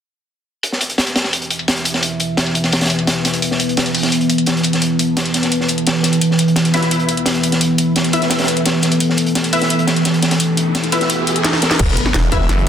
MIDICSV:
0, 0, Header, 1, 7, 480
1, 0, Start_track
1, 0, Key_signature, 1, "minor"
1, 0, Tempo, 348837
1, 871, Time_signature, 4, 2, 24, 8
1, 17456, End_track
2, 0, Start_track
2, 0, Title_t, "Ambient pad"
2, 0, Program_c, 0, 92
2, 871, Note_on_c, 0, 52, 80
2, 871, Note_on_c, 0, 59, 75
2, 871, Note_on_c, 0, 76, 89
2, 872, Note_on_c, 0, 71, 74
2, 4697, Note_off_c, 0, 76, 0
2, 4712, Note_on_c, 0, 81, 88
2, 8496, Note_off_c, 0, 71, 0
2, 8537, Note_off_c, 0, 81, 0
2, 8552, Note_on_c, 0, 69, 73
2, 8552, Note_on_c, 0, 76, 91
2, 12377, Note_off_c, 0, 76, 0
2, 12390, Note_on_c, 0, 79, 87
2, 16176, Note_off_c, 0, 52, 0
2, 16176, Note_off_c, 0, 59, 0
2, 16177, Note_off_c, 0, 69, 0
2, 16216, Note_off_c, 0, 79, 0
2, 16231, Note_on_c, 0, 59, 78
2, 16232, Note_on_c, 0, 71, 78
2, 16232, Note_on_c, 0, 76, 95
2, 16233, Note_on_c, 0, 52, 81
2, 17456, Note_off_c, 0, 52, 0
2, 17456, Note_off_c, 0, 59, 0
2, 17456, Note_off_c, 0, 71, 0
2, 17456, Note_off_c, 0, 76, 0
2, 17456, End_track
3, 0, Start_track
3, 0, Title_t, "Synth stab"
3, 0, Program_c, 1, 62
3, 9271, Note_on_c, 1, 76, 84
3, 9272, Note_on_c, 1, 64, 82
3, 9272, Note_on_c, 1, 71, 73
3, 9414, Note_off_c, 1, 64, 0
3, 9414, Note_off_c, 1, 71, 0
3, 9414, Note_off_c, 1, 76, 0
3, 11190, Note_on_c, 1, 64, 80
3, 11190, Note_on_c, 1, 71, 73
3, 11191, Note_on_c, 1, 76, 86
3, 11333, Note_off_c, 1, 64, 0
3, 11333, Note_off_c, 1, 71, 0
3, 11333, Note_off_c, 1, 76, 0
3, 13110, Note_on_c, 1, 71, 74
3, 13110, Note_on_c, 1, 76, 91
3, 13111, Note_on_c, 1, 64, 80
3, 13253, Note_off_c, 1, 64, 0
3, 13253, Note_off_c, 1, 71, 0
3, 13253, Note_off_c, 1, 76, 0
3, 15030, Note_on_c, 1, 64, 78
3, 15030, Note_on_c, 1, 71, 73
3, 15030, Note_on_c, 1, 76, 88
3, 15173, Note_off_c, 1, 64, 0
3, 15173, Note_off_c, 1, 71, 0
3, 15173, Note_off_c, 1, 76, 0
3, 16951, Note_on_c, 1, 64, 81
3, 16951, Note_on_c, 1, 71, 75
3, 16951, Note_on_c, 1, 76, 88
3, 17094, Note_off_c, 1, 64, 0
3, 17094, Note_off_c, 1, 71, 0
3, 17094, Note_off_c, 1, 76, 0
3, 17456, End_track
4, 0, Start_track
4, 0, Title_t, "Detuned saw bass"
4, 0, Program_c, 2, 39
4, 16230, Note_on_c, 2, 28, 102
4, 16452, Note_off_c, 2, 28, 0
4, 16711, Note_on_c, 2, 28, 98
4, 17172, Note_off_c, 2, 28, 0
4, 17191, Note_on_c, 2, 30, 94
4, 17456, Note_off_c, 2, 30, 0
4, 17456, End_track
5, 0, Start_track
5, 0, Title_t, "Impact"
5, 0, Program_c, 3, 103
5, 16231, Note_on_c, 3, 60, 77
5, 17456, Note_off_c, 3, 60, 0
5, 17456, End_track
6, 0, Start_track
6, 0, Title_t, "Riser"
6, 0, Program_c, 4, 103
6, 12390, Note_on_c, 4, 60, 72
6, 16231, Note_off_c, 4, 60, 0
6, 17456, End_track
7, 0, Start_track
7, 0, Title_t, "Drums"
7, 870, Note_on_c, 9, 42, 89
7, 872, Note_off_c, 9, 42, 0
7, 872, Note_on_c, 9, 42, 77
7, 997, Note_on_c, 9, 38, 33
7, 1010, Note_off_c, 9, 42, 0
7, 1111, Note_on_c, 9, 42, 62
7, 1114, Note_off_c, 9, 42, 0
7, 1114, Note_on_c, 9, 42, 67
7, 1135, Note_off_c, 9, 38, 0
7, 1233, Note_off_c, 9, 42, 0
7, 1233, Note_on_c, 9, 42, 43
7, 1349, Note_on_c, 9, 38, 115
7, 1351, Note_off_c, 9, 42, 0
7, 1351, Note_on_c, 9, 42, 88
7, 1355, Note_off_c, 9, 42, 0
7, 1355, Note_on_c, 9, 42, 93
7, 1468, Note_off_c, 9, 42, 0
7, 1468, Note_on_c, 9, 42, 43
7, 1471, Note_off_c, 9, 42, 0
7, 1471, Note_on_c, 9, 42, 35
7, 1487, Note_off_c, 9, 38, 0
7, 1591, Note_off_c, 9, 42, 0
7, 1591, Note_on_c, 9, 38, 103
7, 1591, Note_on_c, 9, 42, 79
7, 1592, Note_off_c, 9, 42, 0
7, 1592, Note_on_c, 9, 42, 63
7, 1709, Note_off_c, 9, 38, 0
7, 1709, Note_on_c, 9, 38, 47
7, 1711, Note_off_c, 9, 42, 0
7, 1711, Note_on_c, 9, 42, 35
7, 1830, Note_off_c, 9, 42, 0
7, 1830, Note_on_c, 9, 42, 92
7, 1846, Note_off_c, 9, 38, 0
7, 1951, Note_off_c, 9, 42, 0
7, 1951, Note_on_c, 9, 42, 40
7, 2071, Note_off_c, 9, 42, 0
7, 2071, Note_on_c, 9, 42, 63
7, 2192, Note_off_c, 9, 42, 0
7, 2192, Note_on_c, 9, 42, 37
7, 2312, Note_off_c, 9, 42, 0
7, 2312, Note_on_c, 9, 42, 93
7, 2313, Note_on_c, 9, 38, 120
7, 2429, Note_off_c, 9, 42, 0
7, 2429, Note_on_c, 9, 42, 46
7, 2451, Note_off_c, 9, 38, 0
7, 2549, Note_off_c, 9, 42, 0
7, 2549, Note_on_c, 9, 42, 69
7, 2552, Note_off_c, 9, 42, 0
7, 2552, Note_on_c, 9, 42, 62
7, 2671, Note_on_c, 9, 38, 45
7, 2672, Note_off_c, 9, 42, 0
7, 2672, Note_on_c, 9, 42, 36
7, 2788, Note_off_c, 9, 42, 0
7, 2788, Note_on_c, 9, 42, 87
7, 2791, Note_off_c, 9, 42, 0
7, 2791, Note_on_c, 9, 42, 89
7, 2809, Note_off_c, 9, 38, 0
7, 2929, Note_off_c, 9, 42, 0
7, 3023, Note_on_c, 9, 42, 61
7, 3031, Note_off_c, 9, 42, 0
7, 3031, Note_on_c, 9, 42, 62
7, 3169, Note_off_c, 9, 42, 0
7, 3266, Note_on_c, 9, 38, 119
7, 3269, Note_on_c, 9, 42, 82
7, 3272, Note_off_c, 9, 42, 0
7, 3272, Note_on_c, 9, 42, 89
7, 3392, Note_off_c, 9, 42, 0
7, 3392, Note_on_c, 9, 42, 35
7, 3403, Note_off_c, 9, 38, 0
7, 3511, Note_off_c, 9, 42, 0
7, 3511, Note_on_c, 9, 42, 59
7, 3512, Note_off_c, 9, 42, 0
7, 3512, Note_on_c, 9, 42, 72
7, 3630, Note_on_c, 9, 38, 38
7, 3631, Note_off_c, 9, 42, 0
7, 3631, Note_on_c, 9, 42, 36
7, 3748, Note_off_c, 9, 42, 0
7, 3748, Note_on_c, 9, 42, 71
7, 3750, Note_off_c, 9, 42, 0
7, 3750, Note_on_c, 9, 42, 90
7, 3760, Note_off_c, 9, 38, 0
7, 3760, Note_on_c, 9, 38, 95
7, 3867, Note_off_c, 9, 42, 0
7, 3867, Note_on_c, 9, 42, 63
7, 3874, Note_off_c, 9, 38, 0
7, 3874, Note_on_c, 9, 38, 80
7, 3926, Note_off_c, 9, 38, 0
7, 3926, Note_on_c, 9, 38, 80
7, 3928, Note_off_c, 9, 42, 0
7, 3928, Note_on_c, 9, 42, 66
7, 3986, Note_off_c, 9, 42, 0
7, 3986, Note_on_c, 9, 42, 60
7, 3990, Note_off_c, 9, 42, 0
7, 3990, Note_on_c, 9, 42, 63
7, 4063, Note_off_c, 9, 38, 0
7, 4111, Note_off_c, 9, 42, 0
7, 4111, Note_on_c, 9, 42, 35
7, 4230, Note_off_c, 9, 42, 0
7, 4230, Note_on_c, 9, 38, 118
7, 4230, Note_on_c, 9, 42, 93
7, 4238, Note_off_c, 9, 42, 0
7, 4238, Note_on_c, 9, 42, 91
7, 4367, Note_off_c, 9, 38, 0
7, 4375, Note_off_c, 9, 42, 0
7, 4469, Note_on_c, 9, 42, 69
7, 4470, Note_off_c, 9, 42, 0
7, 4470, Note_on_c, 9, 42, 63
7, 4475, Note_on_c, 9, 38, 50
7, 4590, Note_off_c, 9, 42, 0
7, 4590, Note_on_c, 9, 42, 34
7, 4613, Note_off_c, 9, 38, 0
7, 4710, Note_off_c, 9, 42, 0
7, 4710, Note_on_c, 9, 42, 83
7, 4833, Note_on_c, 9, 38, 37
7, 4848, Note_off_c, 9, 42, 0
7, 4950, Note_on_c, 9, 42, 60
7, 4953, Note_off_c, 9, 42, 0
7, 4953, Note_on_c, 9, 42, 66
7, 4971, Note_off_c, 9, 38, 0
7, 5079, Note_off_c, 9, 42, 0
7, 5079, Note_on_c, 9, 42, 42
7, 5190, Note_off_c, 9, 42, 0
7, 5190, Note_on_c, 9, 42, 88
7, 5193, Note_on_c, 9, 38, 123
7, 5208, Note_off_c, 9, 42, 0
7, 5208, Note_on_c, 9, 42, 86
7, 5310, Note_off_c, 9, 42, 0
7, 5310, Note_on_c, 9, 42, 33
7, 5312, Note_off_c, 9, 42, 0
7, 5312, Note_on_c, 9, 42, 39
7, 5331, Note_off_c, 9, 38, 0
7, 5426, Note_on_c, 9, 46, 77
7, 5430, Note_off_c, 9, 42, 0
7, 5430, Note_on_c, 9, 42, 59
7, 5547, Note_on_c, 9, 38, 51
7, 5550, Note_off_c, 9, 42, 0
7, 5550, Note_on_c, 9, 42, 35
7, 5564, Note_off_c, 9, 46, 0
7, 5670, Note_off_c, 9, 42, 0
7, 5670, Note_on_c, 9, 42, 86
7, 5677, Note_off_c, 9, 42, 0
7, 5677, Note_on_c, 9, 42, 83
7, 5685, Note_off_c, 9, 38, 0
7, 5790, Note_off_c, 9, 42, 0
7, 5790, Note_on_c, 9, 42, 43
7, 5911, Note_off_c, 9, 42, 0
7, 5911, Note_on_c, 9, 42, 59
7, 5912, Note_off_c, 9, 42, 0
7, 5912, Note_on_c, 9, 42, 63
7, 6031, Note_off_c, 9, 42, 0
7, 6031, Note_on_c, 9, 42, 35
7, 6142, Note_off_c, 9, 42, 0
7, 6142, Note_on_c, 9, 42, 89
7, 6151, Note_off_c, 9, 42, 0
7, 6151, Note_on_c, 9, 42, 88
7, 6155, Note_on_c, 9, 38, 109
7, 6287, Note_off_c, 9, 42, 0
7, 6287, Note_on_c, 9, 42, 40
7, 6292, Note_off_c, 9, 38, 0
7, 6376, Note_off_c, 9, 42, 0
7, 6376, Note_on_c, 9, 42, 71
7, 6390, Note_off_c, 9, 42, 0
7, 6390, Note_on_c, 9, 42, 60
7, 6511, Note_off_c, 9, 42, 0
7, 6511, Note_on_c, 9, 42, 34
7, 6519, Note_on_c, 9, 38, 43
7, 6630, Note_off_c, 9, 42, 0
7, 6630, Note_on_c, 9, 42, 85
7, 6631, Note_off_c, 9, 42, 0
7, 6631, Note_on_c, 9, 42, 90
7, 6657, Note_off_c, 9, 38, 0
7, 6768, Note_off_c, 9, 42, 0
7, 6871, Note_on_c, 9, 42, 65
7, 7009, Note_off_c, 9, 42, 0
7, 7110, Note_on_c, 9, 42, 89
7, 7111, Note_off_c, 9, 42, 0
7, 7111, Note_on_c, 9, 38, 117
7, 7111, Note_on_c, 9, 42, 87
7, 7231, Note_off_c, 9, 42, 0
7, 7231, Note_on_c, 9, 42, 34
7, 7248, Note_off_c, 9, 38, 0
7, 7349, Note_off_c, 9, 42, 0
7, 7349, Note_on_c, 9, 42, 62
7, 7350, Note_off_c, 9, 42, 0
7, 7350, Note_on_c, 9, 42, 55
7, 7357, Note_on_c, 9, 38, 44
7, 7471, Note_off_c, 9, 42, 0
7, 7471, Note_on_c, 9, 42, 33
7, 7481, Note_off_c, 9, 38, 0
7, 7481, Note_on_c, 9, 38, 37
7, 7592, Note_off_c, 9, 42, 0
7, 7592, Note_on_c, 9, 42, 80
7, 7593, Note_off_c, 9, 42, 0
7, 7593, Note_on_c, 9, 42, 79
7, 7619, Note_off_c, 9, 38, 0
7, 7714, Note_on_c, 9, 38, 34
7, 7731, Note_off_c, 9, 42, 0
7, 7821, Note_on_c, 9, 42, 67
7, 7832, Note_off_c, 9, 42, 0
7, 7832, Note_on_c, 9, 42, 60
7, 7851, Note_off_c, 9, 38, 0
7, 7952, Note_off_c, 9, 42, 0
7, 7952, Note_on_c, 9, 42, 33
7, 8072, Note_off_c, 9, 42, 0
7, 8072, Note_on_c, 9, 42, 89
7, 8081, Note_on_c, 9, 38, 110
7, 8210, Note_off_c, 9, 42, 0
7, 8219, Note_off_c, 9, 38, 0
7, 8301, Note_on_c, 9, 38, 50
7, 8309, Note_on_c, 9, 42, 72
7, 8312, Note_off_c, 9, 42, 0
7, 8312, Note_on_c, 9, 42, 60
7, 8430, Note_off_c, 9, 42, 0
7, 8430, Note_on_c, 9, 42, 43
7, 8432, Note_off_c, 9, 42, 0
7, 8432, Note_on_c, 9, 42, 33
7, 8438, Note_off_c, 9, 38, 0
7, 8551, Note_off_c, 9, 42, 0
7, 8551, Note_on_c, 9, 42, 88
7, 8553, Note_off_c, 9, 42, 0
7, 8553, Note_on_c, 9, 42, 81
7, 8682, Note_on_c, 9, 38, 32
7, 8691, Note_off_c, 9, 42, 0
7, 8791, Note_on_c, 9, 42, 73
7, 8792, Note_off_c, 9, 42, 0
7, 8792, Note_on_c, 9, 42, 60
7, 8820, Note_off_c, 9, 38, 0
7, 8916, Note_off_c, 9, 42, 0
7, 8916, Note_on_c, 9, 42, 41
7, 9025, Note_on_c, 9, 38, 118
7, 9030, Note_off_c, 9, 42, 0
7, 9030, Note_on_c, 9, 42, 87
7, 9031, Note_off_c, 9, 42, 0
7, 9031, Note_on_c, 9, 42, 85
7, 9152, Note_off_c, 9, 42, 0
7, 9152, Note_on_c, 9, 42, 35
7, 9153, Note_off_c, 9, 42, 0
7, 9153, Note_on_c, 9, 42, 44
7, 9163, Note_off_c, 9, 38, 0
7, 9271, Note_off_c, 9, 42, 0
7, 9271, Note_on_c, 9, 42, 60
7, 9277, Note_on_c, 9, 38, 105
7, 9285, Note_off_c, 9, 42, 0
7, 9285, Note_on_c, 9, 42, 72
7, 9382, Note_off_c, 9, 38, 0
7, 9382, Note_on_c, 9, 38, 51
7, 9392, Note_off_c, 9, 42, 0
7, 9392, Note_on_c, 9, 42, 33
7, 9511, Note_off_c, 9, 42, 0
7, 9511, Note_on_c, 9, 42, 85
7, 9517, Note_off_c, 9, 42, 0
7, 9517, Note_on_c, 9, 42, 76
7, 9520, Note_off_c, 9, 38, 0
7, 9625, Note_off_c, 9, 42, 0
7, 9625, Note_on_c, 9, 42, 41
7, 9751, Note_off_c, 9, 42, 0
7, 9751, Note_on_c, 9, 42, 60
7, 9752, Note_off_c, 9, 42, 0
7, 9752, Note_on_c, 9, 42, 63
7, 9871, Note_off_c, 9, 42, 0
7, 9871, Note_on_c, 9, 42, 35
7, 9985, Note_on_c, 9, 38, 127
7, 9991, Note_off_c, 9, 42, 0
7, 9991, Note_on_c, 9, 42, 91
7, 9993, Note_off_c, 9, 42, 0
7, 9993, Note_on_c, 9, 42, 93
7, 10101, Note_off_c, 9, 42, 0
7, 10101, Note_on_c, 9, 42, 45
7, 10123, Note_off_c, 9, 38, 0
7, 10227, Note_off_c, 9, 42, 0
7, 10227, Note_on_c, 9, 42, 65
7, 10232, Note_off_c, 9, 42, 0
7, 10232, Note_on_c, 9, 42, 57
7, 10352, Note_off_c, 9, 42, 0
7, 10352, Note_on_c, 9, 42, 34
7, 10355, Note_on_c, 9, 38, 46
7, 10471, Note_off_c, 9, 42, 0
7, 10471, Note_on_c, 9, 42, 88
7, 10476, Note_off_c, 9, 42, 0
7, 10476, Note_on_c, 9, 42, 81
7, 10492, Note_off_c, 9, 38, 0
7, 10614, Note_off_c, 9, 42, 0
7, 10707, Note_on_c, 9, 42, 67
7, 10711, Note_off_c, 9, 42, 0
7, 10711, Note_on_c, 9, 42, 62
7, 10849, Note_off_c, 9, 42, 0
7, 10949, Note_on_c, 9, 42, 88
7, 10951, Note_off_c, 9, 42, 0
7, 10951, Note_on_c, 9, 42, 86
7, 10956, Note_on_c, 9, 38, 106
7, 11070, Note_off_c, 9, 42, 0
7, 11070, Note_on_c, 9, 42, 34
7, 11093, Note_off_c, 9, 38, 0
7, 11187, Note_off_c, 9, 42, 0
7, 11187, Note_on_c, 9, 42, 65
7, 11190, Note_off_c, 9, 42, 0
7, 11190, Note_on_c, 9, 42, 62
7, 11308, Note_on_c, 9, 38, 42
7, 11310, Note_off_c, 9, 42, 0
7, 11310, Note_on_c, 9, 42, 35
7, 11419, Note_off_c, 9, 38, 0
7, 11419, Note_on_c, 9, 38, 91
7, 11426, Note_off_c, 9, 42, 0
7, 11426, Note_on_c, 9, 42, 70
7, 11429, Note_off_c, 9, 42, 0
7, 11429, Note_on_c, 9, 42, 87
7, 11538, Note_off_c, 9, 42, 0
7, 11538, Note_on_c, 9, 42, 66
7, 11549, Note_off_c, 9, 38, 0
7, 11549, Note_on_c, 9, 38, 86
7, 11609, Note_off_c, 9, 38, 0
7, 11609, Note_on_c, 9, 38, 91
7, 11611, Note_off_c, 9, 42, 0
7, 11611, Note_on_c, 9, 42, 66
7, 11668, Note_off_c, 9, 42, 0
7, 11668, Note_on_c, 9, 42, 67
7, 11670, Note_off_c, 9, 42, 0
7, 11670, Note_on_c, 9, 42, 62
7, 11746, Note_off_c, 9, 38, 0
7, 11789, Note_off_c, 9, 42, 0
7, 11789, Note_on_c, 9, 42, 35
7, 11909, Note_off_c, 9, 42, 0
7, 11909, Note_on_c, 9, 42, 96
7, 11910, Note_off_c, 9, 42, 0
7, 11910, Note_on_c, 9, 42, 91
7, 11919, Note_on_c, 9, 38, 120
7, 12048, Note_off_c, 9, 42, 0
7, 12056, Note_off_c, 9, 38, 0
7, 12143, Note_on_c, 9, 42, 64
7, 12150, Note_off_c, 9, 42, 0
7, 12150, Note_on_c, 9, 42, 65
7, 12152, Note_on_c, 9, 38, 46
7, 12266, Note_off_c, 9, 42, 0
7, 12266, Note_on_c, 9, 42, 45
7, 12270, Note_off_c, 9, 42, 0
7, 12270, Note_on_c, 9, 42, 34
7, 12289, Note_off_c, 9, 38, 0
7, 12390, Note_off_c, 9, 42, 0
7, 12390, Note_on_c, 9, 42, 92
7, 12394, Note_off_c, 9, 42, 0
7, 12394, Note_on_c, 9, 42, 78
7, 12515, Note_on_c, 9, 38, 36
7, 12531, Note_off_c, 9, 42, 0
7, 12624, Note_on_c, 9, 42, 71
7, 12630, Note_off_c, 9, 42, 0
7, 12630, Note_on_c, 9, 42, 65
7, 12653, Note_off_c, 9, 38, 0
7, 12747, Note_off_c, 9, 42, 0
7, 12747, Note_on_c, 9, 42, 45
7, 12870, Note_off_c, 9, 42, 0
7, 12870, Note_on_c, 9, 38, 110
7, 12870, Note_on_c, 9, 42, 97
7, 12877, Note_off_c, 9, 42, 0
7, 12877, Note_on_c, 9, 42, 84
7, 12991, Note_off_c, 9, 42, 0
7, 12991, Note_on_c, 9, 42, 37
7, 12996, Note_off_c, 9, 42, 0
7, 12996, Note_on_c, 9, 42, 44
7, 13008, Note_off_c, 9, 38, 0
7, 13111, Note_off_c, 9, 42, 0
7, 13111, Note_on_c, 9, 42, 62
7, 13112, Note_on_c, 9, 46, 80
7, 13231, Note_off_c, 9, 42, 0
7, 13231, Note_on_c, 9, 42, 37
7, 13236, Note_on_c, 9, 38, 55
7, 13249, Note_off_c, 9, 46, 0
7, 13351, Note_off_c, 9, 42, 0
7, 13351, Note_on_c, 9, 42, 80
7, 13374, Note_off_c, 9, 38, 0
7, 13469, Note_off_c, 9, 42, 0
7, 13469, Note_on_c, 9, 42, 46
7, 13587, Note_on_c, 9, 38, 108
7, 13591, Note_off_c, 9, 42, 0
7, 13591, Note_on_c, 9, 42, 66
7, 13603, Note_off_c, 9, 42, 0
7, 13603, Note_on_c, 9, 42, 76
7, 13711, Note_off_c, 9, 42, 0
7, 13711, Note_on_c, 9, 42, 36
7, 13725, Note_off_c, 9, 38, 0
7, 13831, Note_off_c, 9, 42, 0
7, 13831, Note_on_c, 9, 42, 97
7, 13836, Note_on_c, 9, 38, 101
7, 13839, Note_off_c, 9, 42, 0
7, 13839, Note_on_c, 9, 42, 80
7, 13953, Note_off_c, 9, 42, 0
7, 13953, Note_on_c, 9, 42, 45
7, 13973, Note_off_c, 9, 38, 0
7, 14070, Note_off_c, 9, 42, 0
7, 14070, Note_on_c, 9, 42, 76
7, 14072, Note_on_c, 9, 38, 105
7, 14186, Note_off_c, 9, 42, 0
7, 14186, Note_on_c, 9, 42, 77
7, 14190, Note_off_c, 9, 42, 0
7, 14190, Note_on_c, 9, 42, 36
7, 14192, Note_off_c, 9, 38, 0
7, 14192, Note_on_c, 9, 38, 97
7, 14310, Note_off_c, 9, 42, 0
7, 14310, Note_on_c, 9, 42, 95
7, 14317, Note_off_c, 9, 42, 0
7, 14317, Note_on_c, 9, 42, 92
7, 14330, Note_off_c, 9, 38, 0
7, 14455, Note_off_c, 9, 42, 0
7, 14549, Note_on_c, 9, 42, 65
7, 14552, Note_off_c, 9, 42, 0
7, 14552, Note_on_c, 9, 42, 71
7, 14690, Note_off_c, 9, 42, 0
7, 14788, Note_on_c, 9, 38, 116
7, 14790, Note_on_c, 9, 42, 93
7, 14793, Note_off_c, 9, 42, 0
7, 14793, Note_on_c, 9, 42, 86
7, 14910, Note_off_c, 9, 42, 0
7, 14910, Note_on_c, 9, 42, 36
7, 14926, Note_off_c, 9, 38, 0
7, 15030, Note_off_c, 9, 42, 0
7, 15030, Note_on_c, 9, 42, 63
7, 15031, Note_on_c, 9, 38, 45
7, 15038, Note_off_c, 9, 42, 0
7, 15038, Note_on_c, 9, 42, 71
7, 15151, Note_off_c, 9, 42, 0
7, 15151, Note_on_c, 9, 42, 37
7, 15154, Note_off_c, 9, 38, 0
7, 15154, Note_on_c, 9, 38, 44
7, 15270, Note_off_c, 9, 42, 0
7, 15270, Note_on_c, 9, 42, 95
7, 15275, Note_off_c, 9, 42, 0
7, 15275, Note_on_c, 9, 42, 94
7, 15292, Note_off_c, 9, 38, 0
7, 15413, Note_off_c, 9, 42, 0
7, 15509, Note_on_c, 9, 42, 67
7, 15520, Note_off_c, 9, 42, 0
7, 15520, Note_on_c, 9, 42, 70
7, 15629, Note_off_c, 9, 42, 0
7, 15629, Note_on_c, 9, 42, 37
7, 15749, Note_off_c, 9, 42, 0
7, 15749, Note_on_c, 9, 38, 61
7, 15749, Note_on_c, 9, 42, 94
7, 15869, Note_off_c, 9, 38, 0
7, 15869, Note_on_c, 9, 38, 60
7, 15886, Note_off_c, 9, 42, 0
7, 15989, Note_on_c, 9, 42, 63
7, 15992, Note_off_c, 9, 42, 0
7, 15992, Note_on_c, 9, 42, 71
7, 15999, Note_off_c, 9, 38, 0
7, 15999, Note_on_c, 9, 38, 113
7, 16110, Note_off_c, 9, 38, 0
7, 16110, Note_off_c, 9, 42, 0
7, 16110, Note_on_c, 9, 38, 80
7, 16110, Note_on_c, 9, 42, 38
7, 16229, Note_off_c, 9, 42, 0
7, 16229, Note_on_c, 9, 42, 81
7, 16229, Note_on_c, 9, 49, 99
7, 16231, Note_on_c, 9, 36, 112
7, 16238, Note_off_c, 9, 42, 0
7, 16238, Note_on_c, 9, 42, 90
7, 16247, Note_off_c, 9, 38, 0
7, 16355, Note_on_c, 9, 38, 33
7, 16366, Note_off_c, 9, 49, 0
7, 16368, Note_off_c, 9, 36, 0
7, 16375, Note_off_c, 9, 42, 0
7, 16467, Note_on_c, 9, 42, 64
7, 16470, Note_off_c, 9, 42, 0
7, 16470, Note_on_c, 9, 42, 99
7, 16492, Note_off_c, 9, 38, 0
7, 16590, Note_on_c, 9, 40, 50
7, 16592, Note_off_c, 9, 42, 0
7, 16592, Note_on_c, 9, 42, 45
7, 16708, Note_off_c, 9, 42, 0
7, 16708, Note_on_c, 9, 42, 89
7, 16710, Note_off_c, 9, 42, 0
7, 16710, Note_on_c, 9, 38, 110
7, 16710, Note_on_c, 9, 42, 84
7, 16728, Note_off_c, 9, 40, 0
7, 16822, Note_off_c, 9, 42, 0
7, 16822, Note_on_c, 9, 42, 47
7, 16848, Note_off_c, 9, 38, 0
7, 16945, Note_on_c, 9, 38, 112
7, 16947, Note_off_c, 9, 42, 0
7, 16947, Note_on_c, 9, 42, 71
7, 16951, Note_off_c, 9, 42, 0
7, 16951, Note_on_c, 9, 36, 60
7, 16951, Note_on_c, 9, 40, 35
7, 16951, Note_on_c, 9, 42, 93
7, 17075, Note_off_c, 9, 38, 0
7, 17075, Note_on_c, 9, 38, 49
7, 17089, Note_off_c, 9, 36, 0
7, 17089, Note_off_c, 9, 40, 0
7, 17089, Note_off_c, 9, 42, 0
7, 17190, Note_on_c, 9, 40, 48
7, 17190, Note_on_c, 9, 42, 79
7, 17197, Note_off_c, 9, 42, 0
7, 17197, Note_on_c, 9, 42, 91
7, 17212, Note_off_c, 9, 38, 0
7, 17316, Note_off_c, 9, 42, 0
7, 17316, Note_on_c, 9, 42, 48
7, 17328, Note_off_c, 9, 40, 0
7, 17454, Note_off_c, 9, 42, 0
7, 17456, End_track
0, 0, End_of_file